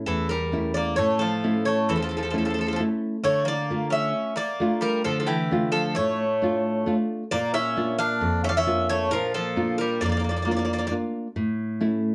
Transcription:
Already playing: nylon-string guitar A3 C#4 E4
0.06 nylon-string guitar E2, bouzouki E3 A4
0.29 bouzouki G3 A#4
0.52 nylon-string guitar A3 C#4 E4
0.74 bouzouki A#3 D5
0.96 nylon-string guitar A2, bouzouki A3 C#5
1.19 bouzouki F3 A4
1.44 nylon-string guitar A3 C#4 E4
1.65 bouzouki A3 C#5
1.89 nylon-string guitar E2, bouzouki E3 A4
1.96 bouzouki F3 A4
2.02 bouzouki F3 A4
2.09 bouzouki F3 A4
2.17 bouzouki F3 A4
2.23 bouzouki F3 A4
2.30 bouzouki F3 A4, nylon-string guitar A3 C#4 E4
2.38 bouzouki F3 A4
2.45 bouzouki F3 A4
2.50 bouzouki F3 A4
2.58 bouzouki F3 A4
2.67 bouzouki F3 A4
2.73 bouzouki F3 A4
2.80 nylon-string guitar A3 C#4 E4
3.24 nylon-string guitar D3, bouzouki A3 C#5
3.45 bouzouki A#3 D5
3.70 nylon-string guitar A3 F4
3.90 bouzouki C#4 E5
4.36 bouzouki A#3 D5
4.60 nylon-string guitar A3 D4 F4
4.81 bouzouki G3 A#4
5.04 nylon-string guitar D3, bouzouki F3 A4
5.20 bouzouki F3 A4
5.27 bouzouki E3 G4
5.51 nylon-string guitar A3 D4 F4
5.72 bouzouki F3 A4
5.95 nylon-string guitar A2, bouzouki A3 C#5
6.42 nylon-string guitar A3 D4 F4
6.86 nylon-string guitar A3 D4 F4
7.31 nylon-string guitar A#2, bouzouki A#3 D5
7.54 bouzouki C#4 E5
7.77 nylon-string guitar A#3 D4 F4
7.98 bouzouki D4 F5
8.21 nylon-string guitar F2
8.44 bouzouki C#4 E5
8.49 bouzouki D4 F5
8.57 bouzouki C#4 E5
8.66 nylon-string guitar A#3 D4 F4
8.89 bouzouki A3 C#5
9.11 nylon-string guitar A#2, bouzouki F3 A#4
9.34 bouzouki F3 A4
9.56 nylon-string guitar A#3 D4 F4
9.78 bouzouki G3 A#4
10.01 nylon-string guitar F2, bouzouki A#3 D5
10.06 bouzouki A#3 D5
10.12 bouzouki D5
10.17 bouzouki A#3 D5
10.24 bouzouki A#3
10.29 bouzouki A#3 D5
10.37 bouzouki A#3 D5
10.42 bouzouki A#3 D5
10.46 nylon-string guitar A#3 D4 F4
10.51 bouzouki A#3 D5
10.57 bouzouki A#3 D5
10.65 bouzouki A#3 D5
10.73 bouzouki A#3 D5
10.79 bouzouki A#3 D5
10.87 bouzouki A#3 D5, nylon-string guitar A#3
10.91 nylon-string guitar D4 F4
11.36 nylon-string guitar A2
11.81 nylon-string guitar A3 C#4 E4

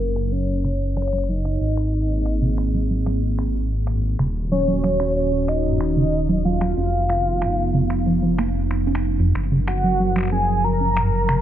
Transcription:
Already playing: detuned saw bass F#1, ambient pad F#3 A#4 F5
0.00 acid bass F#4, soft synth lead A#4
0.16 finger snap
0.32 acid bass F#2, soft synth lead C#5
0.64 acid bass C#3, finger snap
0.97 acid bass F#3, soft synth lead C#5, finger snap
1.02 finger snap
1.07 finger snap
1.13 acid bass F#3, finger snap
1.18 finger snap
1.24 finger snap
1.29 acid bass F#3, soft synth lead D#5
1.45 acid bass C#4, finger snap
1.61 detuned saw bass G#1, ambient pad A#3 C4 G#4
1.77 finger snap
2.10 acid bass F#2
2.26 finger snap
2.42 acid bass C3
2.58 finger snap
2.74 acid bass F#3
2.90 acid bass F#3
3.06 acid bass F#3, finger snap
3.22 acid bass C4
3.39 finger snap
3.55 acid bass F#4
3.87 acid bass F#2, finger snap
4.19 detuned saw bass D#1, acid bass C#3, ambient pad D#3 C#4 F#4, finger snap
4.51 acid bass F#3, soft synth lead C#5
4.68 acid bass F#3
4.84 acid bass F#3, finger snap
5.00 acid bass C#4, finger snap
5.16 soft synth lead C#5
5.32 acid bass F#4
5.48 soft synth lead D#5, finger snap
5.64 acid bass F#2
5.81 finger snap
5.97 acid bass C#3
6.29 acid bass F#3
6.45 acid bass F#3, soft synth lead F5
6.61 acid bass F#3, finger snap
6.77 detuned saw bass F1, ambient pad F3 B3 D#4, acid bass C#4
7.09 acid bass F4, finger snap
7.42 acid bass F2, finger snap
7.74 acid bass C#3
7.90 finger snap
8.06 acid bass F3
8.22 acid bass F3
8.38 acid bass A#3, finger snap
8.55 acid bass C#4
8.71 finger snap
8.87 acid bass C#4
8.95 finger snap
9.19 acid bass F2
9.35 detuned saw bass F#1, ambient pad F3 F#3 A#4, finger snap
9.52 acid bass C#3
9.67 soft synth lead F#5, finger snap
9.84 acid bass F#3
10.00 acid bass F#3
10.16 acid bass F#3, finger snap
10.18 finger snap
10.21 finger snap
10.23 finger snap
10.25 finger snap
10.28 finger snap
10.30 acid bass C#4, soft synth lead G#5, finger snap
10.64 acid bass F#4, soft synth lead A#5
10.81 acid bass C#4
10.97 acid bass F#2, finger snap
11.29 acid bass C#3, finger snap

